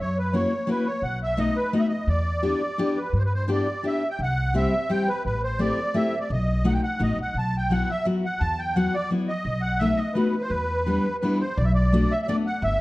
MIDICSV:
0, 0, Header, 1, 4, 480
1, 0, Start_track
1, 0, Key_signature, 1, "minor"
1, 0, Tempo, 351494
1, 1396, Time_signature, 3, 2, 24, 8
1, 17491, End_track
2, 0, Start_track
2, 0, Title_t, "Accordion"
2, 0, Program_c, 0, 21
2, 6, Note_on_c, 0, 73, 82
2, 243, Note_off_c, 0, 73, 0
2, 252, Note_on_c, 0, 71, 69
2, 462, Note_on_c, 0, 73, 70
2, 465, Note_off_c, 0, 71, 0
2, 943, Note_off_c, 0, 73, 0
2, 952, Note_on_c, 0, 71, 63
2, 1179, Note_on_c, 0, 73, 77
2, 1194, Note_off_c, 0, 71, 0
2, 1403, Note_on_c, 0, 78, 79
2, 1407, Note_off_c, 0, 73, 0
2, 1635, Note_off_c, 0, 78, 0
2, 1684, Note_on_c, 0, 76, 86
2, 1890, Note_on_c, 0, 75, 91
2, 1899, Note_off_c, 0, 76, 0
2, 2135, Note_on_c, 0, 71, 85
2, 2142, Note_off_c, 0, 75, 0
2, 2363, Note_off_c, 0, 71, 0
2, 2375, Note_on_c, 0, 75, 76
2, 2458, Note_on_c, 0, 76, 69
2, 2469, Note_off_c, 0, 75, 0
2, 2559, Note_off_c, 0, 76, 0
2, 2578, Note_on_c, 0, 75, 66
2, 2847, Note_on_c, 0, 74, 75
2, 2849, Note_off_c, 0, 75, 0
2, 4062, Note_on_c, 0, 71, 60
2, 4090, Note_off_c, 0, 74, 0
2, 4267, Note_off_c, 0, 71, 0
2, 4287, Note_on_c, 0, 71, 76
2, 4345, Note_off_c, 0, 71, 0
2, 4348, Note_on_c, 0, 72, 55
2, 4406, Note_off_c, 0, 72, 0
2, 4434, Note_on_c, 0, 71, 69
2, 4548, Note_off_c, 0, 71, 0
2, 4568, Note_on_c, 0, 72, 69
2, 4782, Note_off_c, 0, 72, 0
2, 4805, Note_on_c, 0, 74, 74
2, 5276, Note_off_c, 0, 74, 0
2, 5279, Note_on_c, 0, 76, 81
2, 5589, Note_off_c, 0, 76, 0
2, 5598, Note_on_c, 0, 79, 72
2, 5744, Note_off_c, 0, 79, 0
2, 5772, Note_on_c, 0, 78, 86
2, 6196, Note_off_c, 0, 78, 0
2, 6229, Note_on_c, 0, 76, 95
2, 6700, Note_on_c, 0, 79, 86
2, 6710, Note_off_c, 0, 76, 0
2, 6940, Note_on_c, 0, 71, 87
2, 6952, Note_off_c, 0, 79, 0
2, 7149, Note_off_c, 0, 71, 0
2, 7170, Note_on_c, 0, 71, 79
2, 7401, Note_off_c, 0, 71, 0
2, 7425, Note_on_c, 0, 72, 76
2, 7648, Note_on_c, 0, 74, 88
2, 7652, Note_off_c, 0, 72, 0
2, 8130, Note_on_c, 0, 76, 87
2, 8138, Note_off_c, 0, 74, 0
2, 8454, Note_off_c, 0, 76, 0
2, 8469, Note_on_c, 0, 74, 70
2, 8619, Note_off_c, 0, 74, 0
2, 8635, Note_on_c, 0, 75, 75
2, 9104, Note_on_c, 0, 78, 86
2, 9112, Note_off_c, 0, 75, 0
2, 9198, Note_off_c, 0, 78, 0
2, 9206, Note_on_c, 0, 79, 83
2, 9299, Note_off_c, 0, 79, 0
2, 9331, Note_on_c, 0, 78, 88
2, 9593, Note_off_c, 0, 78, 0
2, 9596, Note_on_c, 0, 75, 81
2, 9818, Note_off_c, 0, 75, 0
2, 9856, Note_on_c, 0, 78, 85
2, 10072, Note_off_c, 0, 78, 0
2, 10081, Note_on_c, 0, 81, 79
2, 10326, Note_off_c, 0, 81, 0
2, 10342, Note_on_c, 0, 79, 91
2, 10545, Note_on_c, 0, 78, 86
2, 10556, Note_off_c, 0, 79, 0
2, 10796, Note_on_c, 0, 76, 90
2, 10799, Note_off_c, 0, 78, 0
2, 11001, Note_off_c, 0, 76, 0
2, 11268, Note_on_c, 0, 78, 82
2, 11477, Note_on_c, 0, 81, 90
2, 11499, Note_off_c, 0, 78, 0
2, 11728, Note_on_c, 0, 79, 91
2, 11744, Note_off_c, 0, 81, 0
2, 11960, Note_on_c, 0, 78, 87
2, 11968, Note_off_c, 0, 79, 0
2, 12211, Note_on_c, 0, 74, 96
2, 12225, Note_off_c, 0, 78, 0
2, 12426, Note_off_c, 0, 74, 0
2, 12680, Note_on_c, 0, 75, 89
2, 13134, Note_off_c, 0, 75, 0
2, 13134, Note_on_c, 0, 78, 98
2, 13368, Note_on_c, 0, 76, 101
2, 13390, Note_off_c, 0, 78, 0
2, 13605, Note_on_c, 0, 75, 89
2, 13648, Note_off_c, 0, 76, 0
2, 13845, Note_on_c, 0, 71, 67
2, 13865, Note_off_c, 0, 75, 0
2, 14227, Note_on_c, 0, 72, 76
2, 14241, Note_off_c, 0, 71, 0
2, 14315, Note_on_c, 0, 71, 85
2, 14354, Note_off_c, 0, 72, 0
2, 15247, Note_off_c, 0, 71, 0
2, 15303, Note_on_c, 0, 71, 69
2, 15550, Note_off_c, 0, 71, 0
2, 15570, Note_on_c, 0, 72, 71
2, 15804, Note_on_c, 0, 74, 78
2, 15809, Note_off_c, 0, 72, 0
2, 15908, Note_on_c, 0, 76, 71
2, 15912, Note_off_c, 0, 74, 0
2, 16012, Note_off_c, 0, 76, 0
2, 16030, Note_on_c, 0, 74, 79
2, 16543, Note_on_c, 0, 76, 107
2, 16564, Note_off_c, 0, 74, 0
2, 16674, Note_off_c, 0, 76, 0
2, 16694, Note_on_c, 0, 76, 71
2, 16759, Note_off_c, 0, 76, 0
2, 16766, Note_on_c, 0, 74, 101
2, 16880, Note_off_c, 0, 74, 0
2, 17022, Note_on_c, 0, 78, 89
2, 17253, Note_off_c, 0, 78, 0
2, 17256, Note_on_c, 0, 76, 98
2, 17491, Note_off_c, 0, 76, 0
2, 17491, End_track
3, 0, Start_track
3, 0, Title_t, "Steel-string acoustic guitar"
3, 0, Program_c, 1, 25
3, 454, Note_on_c, 1, 58, 55
3, 462, Note_on_c, 1, 61, 50
3, 464, Note_on_c, 1, 64, 51
3, 471, Note_on_c, 1, 66, 60
3, 702, Note_off_c, 1, 58, 0
3, 702, Note_off_c, 1, 61, 0
3, 704, Note_off_c, 1, 66, 0
3, 705, Note_off_c, 1, 64, 0
3, 914, Note_on_c, 1, 58, 62
3, 922, Note_on_c, 1, 61, 49
3, 933, Note_on_c, 1, 66, 60
3, 945, Note_on_c, 1, 64, 54
3, 1172, Note_off_c, 1, 61, 0
3, 1173, Note_off_c, 1, 58, 0
3, 1173, Note_off_c, 1, 64, 0
3, 1173, Note_off_c, 1, 66, 0
3, 1873, Note_on_c, 1, 57, 52
3, 1886, Note_on_c, 1, 66, 61
3, 1888, Note_on_c, 1, 63, 48
3, 1891, Note_on_c, 1, 59, 44
3, 2128, Note_off_c, 1, 57, 0
3, 2130, Note_off_c, 1, 63, 0
3, 2132, Note_off_c, 1, 59, 0
3, 2134, Note_off_c, 1, 66, 0
3, 2363, Note_on_c, 1, 57, 59
3, 2365, Note_on_c, 1, 63, 51
3, 2368, Note_on_c, 1, 66, 61
3, 2374, Note_on_c, 1, 59, 50
3, 2610, Note_off_c, 1, 59, 0
3, 2610, Note_off_c, 1, 63, 0
3, 2612, Note_off_c, 1, 57, 0
3, 2613, Note_off_c, 1, 66, 0
3, 3313, Note_on_c, 1, 67, 67
3, 3317, Note_on_c, 1, 59, 55
3, 3320, Note_on_c, 1, 62, 51
3, 3330, Note_on_c, 1, 64, 37
3, 3566, Note_off_c, 1, 59, 0
3, 3567, Note_off_c, 1, 64, 0
3, 3568, Note_off_c, 1, 67, 0
3, 3569, Note_off_c, 1, 62, 0
3, 3797, Note_on_c, 1, 62, 65
3, 3803, Note_on_c, 1, 59, 61
3, 3811, Note_on_c, 1, 64, 52
3, 3813, Note_on_c, 1, 67, 67
3, 4050, Note_off_c, 1, 59, 0
3, 4050, Note_off_c, 1, 64, 0
3, 4052, Note_off_c, 1, 62, 0
3, 4056, Note_off_c, 1, 67, 0
3, 4748, Note_on_c, 1, 59, 55
3, 4752, Note_on_c, 1, 62, 48
3, 4761, Note_on_c, 1, 67, 67
3, 4772, Note_on_c, 1, 64, 47
3, 5006, Note_off_c, 1, 59, 0
3, 5011, Note_off_c, 1, 62, 0
3, 5011, Note_off_c, 1, 64, 0
3, 5011, Note_off_c, 1, 67, 0
3, 5233, Note_on_c, 1, 62, 52
3, 5242, Note_on_c, 1, 67, 58
3, 5246, Note_on_c, 1, 59, 48
3, 5260, Note_on_c, 1, 64, 42
3, 5492, Note_off_c, 1, 59, 0
3, 5494, Note_off_c, 1, 62, 0
3, 5494, Note_off_c, 1, 64, 0
3, 5494, Note_off_c, 1, 67, 0
3, 6198, Note_on_c, 1, 55, 60
3, 6209, Note_on_c, 1, 67, 59
3, 6210, Note_on_c, 1, 60, 54
3, 6222, Note_on_c, 1, 64, 48
3, 6457, Note_off_c, 1, 55, 0
3, 6458, Note_off_c, 1, 67, 0
3, 6459, Note_off_c, 1, 60, 0
3, 6459, Note_off_c, 1, 64, 0
3, 6684, Note_on_c, 1, 55, 52
3, 6687, Note_on_c, 1, 60, 51
3, 6695, Note_on_c, 1, 64, 40
3, 6702, Note_on_c, 1, 67, 60
3, 6938, Note_off_c, 1, 55, 0
3, 6940, Note_off_c, 1, 64, 0
3, 6941, Note_off_c, 1, 60, 0
3, 6942, Note_off_c, 1, 67, 0
3, 7635, Note_on_c, 1, 57, 66
3, 7643, Note_on_c, 1, 60, 52
3, 7653, Note_on_c, 1, 67, 60
3, 7665, Note_on_c, 1, 64, 49
3, 7894, Note_off_c, 1, 57, 0
3, 7894, Note_off_c, 1, 60, 0
3, 7895, Note_off_c, 1, 67, 0
3, 7896, Note_off_c, 1, 64, 0
3, 8115, Note_on_c, 1, 57, 64
3, 8126, Note_on_c, 1, 60, 48
3, 8130, Note_on_c, 1, 67, 53
3, 8140, Note_on_c, 1, 64, 44
3, 8374, Note_off_c, 1, 57, 0
3, 8375, Note_off_c, 1, 67, 0
3, 8376, Note_off_c, 1, 60, 0
3, 8376, Note_off_c, 1, 64, 0
3, 9074, Note_on_c, 1, 57, 58
3, 9082, Note_on_c, 1, 63, 52
3, 9083, Note_on_c, 1, 66, 62
3, 9093, Note_on_c, 1, 59, 44
3, 9333, Note_off_c, 1, 57, 0
3, 9334, Note_off_c, 1, 66, 0
3, 9337, Note_off_c, 1, 63, 0
3, 9339, Note_off_c, 1, 59, 0
3, 9552, Note_on_c, 1, 57, 67
3, 9561, Note_on_c, 1, 63, 46
3, 9562, Note_on_c, 1, 66, 58
3, 9571, Note_on_c, 1, 59, 40
3, 9815, Note_off_c, 1, 57, 0
3, 9815, Note_off_c, 1, 63, 0
3, 9817, Note_off_c, 1, 59, 0
3, 9818, Note_off_c, 1, 66, 0
3, 10514, Note_on_c, 1, 54, 53
3, 10527, Note_on_c, 1, 66, 65
3, 10531, Note_on_c, 1, 59, 49
3, 10542, Note_on_c, 1, 64, 52
3, 10779, Note_off_c, 1, 59, 0
3, 10780, Note_off_c, 1, 54, 0
3, 10780, Note_off_c, 1, 64, 0
3, 10781, Note_off_c, 1, 66, 0
3, 10997, Note_on_c, 1, 54, 65
3, 11007, Note_on_c, 1, 59, 54
3, 11010, Note_on_c, 1, 66, 53
3, 11014, Note_on_c, 1, 64, 43
3, 11259, Note_off_c, 1, 54, 0
3, 11261, Note_off_c, 1, 66, 0
3, 11263, Note_off_c, 1, 59, 0
3, 11263, Note_off_c, 1, 64, 0
3, 11961, Note_on_c, 1, 54, 63
3, 11961, Note_on_c, 1, 59, 50
3, 11972, Note_on_c, 1, 66, 68
3, 11974, Note_on_c, 1, 64, 48
3, 12217, Note_off_c, 1, 59, 0
3, 12219, Note_off_c, 1, 54, 0
3, 12219, Note_off_c, 1, 64, 0
3, 12223, Note_off_c, 1, 66, 0
3, 12434, Note_on_c, 1, 54, 58
3, 12436, Note_on_c, 1, 66, 58
3, 12449, Note_on_c, 1, 59, 52
3, 12455, Note_on_c, 1, 64, 51
3, 12694, Note_off_c, 1, 64, 0
3, 12694, Note_off_c, 1, 66, 0
3, 12695, Note_off_c, 1, 54, 0
3, 12696, Note_off_c, 1, 59, 0
3, 13395, Note_on_c, 1, 57, 71
3, 13404, Note_on_c, 1, 63, 57
3, 13414, Note_on_c, 1, 66, 63
3, 13420, Note_on_c, 1, 59, 47
3, 13657, Note_off_c, 1, 57, 0
3, 13658, Note_off_c, 1, 63, 0
3, 13659, Note_off_c, 1, 59, 0
3, 13659, Note_off_c, 1, 66, 0
3, 13861, Note_on_c, 1, 57, 55
3, 13872, Note_on_c, 1, 63, 51
3, 13880, Note_on_c, 1, 66, 66
3, 13889, Note_on_c, 1, 59, 50
3, 14129, Note_off_c, 1, 57, 0
3, 14130, Note_off_c, 1, 66, 0
3, 14131, Note_off_c, 1, 59, 0
3, 14131, Note_off_c, 1, 63, 0
3, 14833, Note_on_c, 1, 62, 49
3, 14842, Note_on_c, 1, 55, 57
3, 14846, Note_on_c, 1, 59, 49
3, 14856, Note_on_c, 1, 64, 52
3, 15095, Note_off_c, 1, 59, 0
3, 15096, Note_off_c, 1, 62, 0
3, 15097, Note_off_c, 1, 55, 0
3, 15097, Note_off_c, 1, 64, 0
3, 15327, Note_on_c, 1, 62, 57
3, 15332, Note_on_c, 1, 55, 65
3, 15341, Note_on_c, 1, 59, 47
3, 15351, Note_on_c, 1, 64, 61
3, 15583, Note_off_c, 1, 55, 0
3, 15583, Note_off_c, 1, 59, 0
3, 15584, Note_off_c, 1, 62, 0
3, 15585, Note_off_c, 1, 64, 0
3, 16286, Note_on_c, 1, 57, 65
3, 16300, Note_on_c, 1, 59, 40
3, 16300, Note_on_c, 1, 62, 43
3, 16301, Note_on_c, 1, 66, 73
3, 16542, Note_off_c, 1, 59, 0
3, 16543, Note_off_c, 1, 57, 0
3, 16544, Note_off_c, 1, 62, 0
3, 16548, Note_off_c, 1, 66, 0
3, 16773, Note_on_c, 1, 57, 57
3, 16782, Note_on_c, 1, 62, 45
3, 16783, Note_on_c, 1, 66, 65
3, 16785, Note_on_c, 1, 59, 50
3, 17024, Note_off_c, 1, 57, 0
3, 17024, Note_off_c, 1, 62, 0
3, 17027, Note_off_c, 1, 59, 0
3, 17029, Note_off_c, 1, 66, 0
3, 17491, End_track
4, 0, Start_track
4, 0, Title_t, "Upright bass"
4, 0, Program_c, 2, 32
4, 0, Note_on_c, 2, 42, 71
4, 587, Note_off_c, 2, 42, 0
4, 1391, Note_on_c, 2, 35, 63
4, 2014, Note_off_c, 2, 35, 0
4, 2829, Note_on_c, 2, 40, 68
4, 3453, Note_off_c, 2, 40, 0
4, 4274, Note_on_c, 2, 43, 74
4, 4901, Note_off_c, 2, 43, 0
4, 5719, Note_on_c, 2, 36, 76
4, 6345, Note_off_c, 2, 36, 0
4, 7169, Note_on_c, 2, 33, 60
4, 7789, Note_off_c, 2, 33, 0
4, 8605, Note_on_c, 2, 35, 87
4, 9230, Note_off_c, 2, 35, 0
4, 9563, Note_on_c, 2, 33, 81
4, 9793, Note_off_c, 2, 33, 0
4, 9808, Note_on_c, 2, 35, 43
4, 10018, Note_off_c, 2, 35, 0
4, 10028, Note_on_c, 2, 35, 72
4, 10660, Note_off_c, 2, 35, 0
4, 11480, Note_on_c, 2, 40, 86
4, 12105, Note_off_c, 2, 40, 0
4, 12904, Note_on_c, 2, 35, 72
4, 13534, Note_off_c, 2, 35, 0
4, 14340, Note_on_c, 2, 40, 69
4, 14973, Note_off_c, 2, 40, 0
4, 15807, Note_on_c, 2, 35, 91
4, 16431, Note_off_c, 2, 35, 0
4, 17235, Note_on_c, 2, 31, 89
4, 17491, Note_off_c, 2, 31, 0
4, 17491, End_track
0, 0, End_of_file